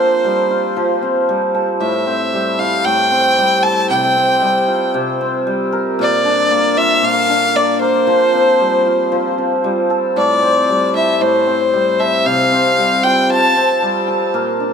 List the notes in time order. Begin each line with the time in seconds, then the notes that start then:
Already playing: F3 A#3 C4 D4 F4 A#4 C5
0.24 G3
0.51 F4
0.77 F3
1.02 C4
1.29 G3
1.54 A4
1.80 A2 E5
2.07 C4
2.33 G3
2.59 E4 F5
2.85 A2 G5
3.11 C4
3.38 G3
3.63 A4 A5
3.90 C3 G5
4.16 C4
4.42 G3
4.68 F4
4.94 C3
5.21 C4
5.47 G3
5.72 A#4
5.99 A#2 D5
6.25 D4
6.51 A#3
6.77 F4 E5
7.02 A#2 F5
7.29 D4
7.55 A#3 D5
7.81 A#4 C5
8.07 F3
8.33 C4
8.60 G3
8.86 F4
9.12 F3
9.38 C4
9.64 G3
9.90 A4
10.16 A2 D5
10.42 C4
10.69 G3
10.95 E4 E5
11.21 A2 C5
11.47 C4
11.73 G3
11.99 A4 E5
12.25 C3 F5
12.52 C4
12.78 G3
13.03 F4 G5
13.29 F3 A5
13.56 C4
13.82 G3
14.08 A4
14.34 A#2 A#4
14.60 D4